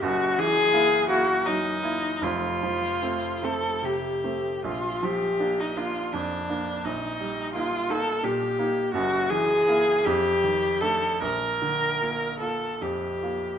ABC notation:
X:1
M:6/8
L:1/16
Q:3/8=53
K:Fmix
V:1 name="Viola"
_G2 _A4 G2 E4 | F6 A2 G4 | F2 G3 E F2 D4 | E4 F2 A2 G4 |
_G2 _A4 =G4 =A2 | B6 A2 G4 |]
V:2 name="Grand piano"
[_G,,,_G,,]2 _F,2 [B,_F]2 [B,F]2 _G,2 [B,F]2 | [F,,,F,,]2 F,2 [A,C]2 [A,C]2 C,2 [A,C]2 | B,,,2 F,2 [B,D]2 [B,D]2 F,,2 [B,D]2 | B,,,2 G,2 [B,E]2 [B,E]2 B,,2 [B,E]2 |
[_G,,,_G,,]2 _F,2 [B,_F]2 =F,,2 E,2 [A,D]2 | B,,,2 D,2 [B,F]2 [B,F]2 F,,2 [B,F]2 |]